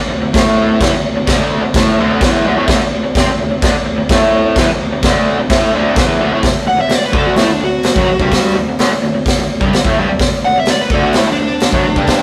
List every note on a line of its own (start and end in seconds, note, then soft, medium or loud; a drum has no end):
0.11 muted overdriven electric guitar stroke medium
0.23 0.34 D2 medium
0.34 0.81 A2 loud
0.34 0.81 A3 medium
0.34 kick loud
0.34 snare loud
0.34 crash medium
0.81 0.92 E2 loud
0.81 0.93 E3 loud
0.81 kick loud
0.81 snare loud
0.81 crash medium
0.92 1.11 D2 medium
1.17 1.25 D2 medium
1.27 1.62 D2 loud
1.27 1.62 D3 loud
1.27 kick loud
1.27 snare loud
1.27 crash medium
1.63 1.75 D2 medium
1.74 1.98 A2 loud
1.74 1.99 A3 loud
1.74 kick loud
1.74 snare loud
1.74 crash medium
1.99 2.22 D2 medium
1.99 2.22 D3 loud
2.21 2.45 E2 medium
2.21 2.46 E3 loud
2.21 kick loud
2.21 snare loud
2.21 crash medium
2.46 2.57 D2 loud
2.46 2.57 D3 loud
2.57 2.68 A2 medium
2.57 2.68 A3 loud
2.68 2.80 D2 loud
2.68 2.80 D3 loud
2.68 kick loud
2.68 snare loud
2.68 crash medium
2.81 3.00 D2 medium
3.04 3.16 D2 medium
3.15 3.27 C3 loud
3.15 3.28 C4 loud
3.15 kick loud
3.15 snare loud
3.15 crash medium
3.28 3.38 D2 medium
3.39 3.50 D2 medium
3.51 3.62 D2 medium
3.62 3.73 D2 loud
3.62 3.74 D3 loud
3.62 kick loud
3.62 snare loud
3.62 crash medium
3.74 muted overdriven electric guitar stroke medium
3.86 muted overdriven electric guitar stroke medium
3.98 4.09 D2 medium
4.09 4.56 A2 medium
4.09 4.57 A3 medium
4.09 kick loud
4.09 snare loud
4.09 crash medium
4.56 4.68 E2 loud
4.56 4.68 E3 loud
4.56 kick loud
4.56 snare loud
4.56 crash medium
4.69 4.87 D2 medium
4.92 5.03 D2 medium
5.03 5.38 D2 medium
5.03 5.39 D3 loud
5.03 kick loud
5.03 snare loud
5.03 crash medium
5.39 5.49 D2 medium
5.50 5.73 A2 loud
5.50 5.73 A3 loud
5.50 kick loud
5.50 snare loud
5.50 crash medium
5.73 5.96 D2 loud
5.73 5.97 D3 loud
5.96 6.19 E2 medium
5.96 6.20 E3 loud
5.96 kick loud
5.96 snare loud
5.96 crash medium
6.20 6.31 D2 medium
6.20 6.32 D3 loud
6.32 6.43 A2 medium
6.32 6.44 A3 loud
6.43 kick loud
6.43 snare loud
6.43 open hi-hat medium
6.67 6.79 F#5 medium
6.67 muted overdriven electric guitar stroke medium
6.79 6.92 E5 medium
6.79 muted overdriven electric guitar stroke medium
6.89 muted overdriven electric guitar stroke medium
6.89 snare loud
6.89 open hi-hat medium
6.95 7.05 D5 medium
7.06 7.16 B4 medium
7.12 7.36 D2 medium
7.12 7.37 D3 loud
7.12 kick loud
7.17 7.27 A4 medium
7.27 7.38 F#4 medium
7.36 7.47 A2 medium
7.36 7.49 A3 loud
7.36 snare loud
7.36 open hi-hat medium
7.43 7.59 D2 medium
7.43 7.53 E4 medium
7.53 7.63 D4 medium
7.60 7.80 D2 medium
7.60 8.54 F#4 loud
7.83 muted overdriven electric guitar stroke medium
7.83 snare loud
7.83 open hi-hat medium
7.96 8.08 F#2 medium
7.96 8.09 F#3 loud
7.96 kick loud
8.10 8.20 D2 medium
8.20 8.55 G2 medium
8.20 8.56 G3 medium
8.20 kick loud
8.32 kick medium
8.32 snare loud
8.32 open hi-hat medium
8.56 8.68 D2 medium
8.69 8.78 D2 medium
8.79 8.90 D2 medium
8.79 8.91 D3 loud
8.79 snare loud
8.79 open hi-hat medium
8.93 muted overdriven electric guitar stroke medium
9.04 9.14 D2 medium
9.15 9.34 D2 medium
9.26 kick loud
9.26 snare loud
9.26 open hi-hat medium
9.39 9.57 D2 medium
9.60 9.72 G2 medium
9.60 9.73 G3 loud
9.60 kick loud
9.73 9.85 D2 medium
9.73 snare loud
9.73 open hi-hat medium
9.85 9.96 A2 medium
9.85 9.97 A3 medium
9.85 kick loud
9.98 10.09 G2 medium
9.98 10.09 G3 loud
10.11 muted overdriven electric guitar stroke medium
10.19 kick loud
10.19 snare loud
10.19 open hi-hat medium
10.45 10.56 F#5 medium
10.45 muted overdriven electric guitar stroke medium
10.58 10.70 E5 medium
10.58 muted overdriven electric guitar stroke medium
10.66 snare loud
10.66 open hi-hat medium
10.70 10.80 D5 medium
10.70 muted overdriven electric guitar stroke medium
10.81 10.92 B4 medium
10.90 11.15 D2 medium
10.90 11.03 A4 medium
10.90 kick loud
10.94 11.16 D3 loud
11.03 11.17 F#4 medium
11.13 11.27 A2 medium
11.13 snare loud
11.13 open hi-hat medium
11.17 11.27 A3 loud
11.17 11.27 E4 medium
11.29 11.38 D2 medium
11.29 11.37 D4 loud
11.39 11.58 D2 medium
11.39 12.22 D4 medium
11.60 muted overdriven electric guitar stroke medium
11.60 snare loud
11.60 open hi-hat medium
11.72 11.85 F#2 medium
11.72 11.85 F#3 medium
11.72 kick loud
11.86 11.97 D2 medium
11.96 12.22 G2 medium
11.96 12.22 G3 loud
11.96 kick loud
12.07 kick loud
12.07 snare loud
12.07 open hi-hat medium